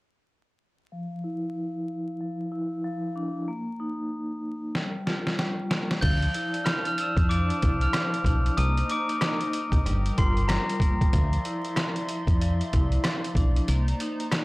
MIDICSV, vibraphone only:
0, 0, Header, 1, 2, 480
1, 0, Start_track
1, 0, Tempo, 638298
1, 691, Time_signature, 4, 2, 24, 8
1, 10863, End_track
2, 0, Start_track
2, 0, Title_t, "Vibraphone"
2, 0, Program_c, 0, 11
2, 692, Note_on_c, 0, 53, 80
2, 820, Control_c, 0, 64, 127
2, 932, Note_on_c, 0, 64, 77
2, 1649, Note_off_c, 0, 53, 0
2, 1658, Note_on_c, 0, 53, 67
2, 1883, Note_off_c, 0, 64, 0
2, 1892, Note_on_c, 0, 64, 75
2, 2126, Note_off_c, 0, 53, 0
2, 2135, Note_on_c, 0, 53, 87
2, 2372, Note_on_c, 0, 62, 75
2, 2611, Note_off_c, 0, 64, 0
2, 2612, Note_off_c, 0, 62, 0
2, 2613, Note_off_c, 0, 53, 0
2, 2614, Note_on_c, 0, 58, 76
2, 2620, Control_c, 0, 64, 0
2, 2738, Control_c, 0, 64, 127
2, 2855, Note_on_c, 0, 63, 75
2, 3573, Note_off_c, 0, 58, 0
2, 3573, Note_off_c, 0, 63, 0
2, 3575, Note_on_c, 0, 55, 68
2, 3580, Control_c, 0, 64, 0
2, 3716, Control_c, 0, 64, 127
2, 3809, Note_on_c, 0, 65, 77
2, 4045, Note_off_c, 0, 55, 0
2, 4054, Note_on_c, 0, 55, 89
2, 4289, Note_on_c, 0, 58, 74
2, 4530, Note_off_c, 0, 58, 0
2, 4530, Note_off_c, 0, 65, 0
2, 4533, Note_off_c, 0, 55, 0
2, 4535, Note_on_c, 0, 53, 89
2, 4539, Control_c, 0, 64, 0
2, 4673, Control_c, 0, 64, 127
2, 4775, Note_on_c, 0, 64, 81
2, 5489, Note_off_c, 0, 53, 0
2, 5498, Note_on_c, 0, 53, 74
2, 5722, Note_off_c, 0, 64, 0
2, 5731, Note_on_c, 0, 64, 79
2, 5966, Note_off_c, 0, 53, 0
2, 5975, Note_on_c, 0, 53, 91
2, 6212, Note_on_c, 0, 62, 81
2, 6451, Note_off_c, 0, 64, 0
2, 6452, Note_off_c, 0, 62, 0
2, 6453, Note_off_c, 0, 53, 0
2, 6456, Note_on_c, 0, 58, 84
2, 6463, Control_c, 0, 64, 0
2, 6573, Control_c, 0, 64, 127
2, 6696, Note_on_c, 0, 63, 78
2, 7413, Note_off_c, 0, 58, 0
2, 7414, Note_off_c, 0, 63, 0
2, 7414, Note_on_c, 0, 55, 74
2, 7422, Control_c, 0, 64, 0
2, 7536, Control_c, 0, 64, 127
2, 7648, Note_on_c, 0, 65, 81
2, 7885, Note_off_c, 0, 55, 0
2, 7894, Note_on_c, 0, 55, 92
2, 8127, Note_on_c, 0, 58, 81
2, 8369, Note_off_c, 0, 58, 0
2, 8370, Note_off_c, 0, 65, 0
2, 8372, Note_off_c, 0, 55, 0
2, 8372, Note_on_c, 0, 53, 86
2, 8381, Control_c, 0, 64, 0
2, 8505, Control_c, 0, 64, 127
2, 8613, Note_on_c, 0, 64, 82
2, 9329, Note_off_c, 0, 53, 0
2, 9338, Note_on_c, 0, 53, 75
2, 9564, Note_off_c, 0, 64, 0
2, 9573, Note_on_c, 0, 64, 81
2, 9807, Note_off_c, 0, 53, 0
2, 9816, Note_on_c, 0, 53, 92
2, 10054, Note_on_c, 0, 62, 79
2, 10292, Note_off_c, 0, 64, 0
2, 10293, Note_off_c, 0, 53, 0
2, 10293, Note_off_c, 0, 62, 0
2, 10295, Note_on_c, 0, 58, 80
2, 10300, Control_c, 0, 64, 0
2, 10429, Control_c, 0, 64, 127
2, 10536, Note_on_c, 0, 63, 76
2, 10863, Note_off_c, 0, 58, 0
2, 10863, Note_off_c, 0, 63, 0
2, 10863, End_track
0, 0, End_of_file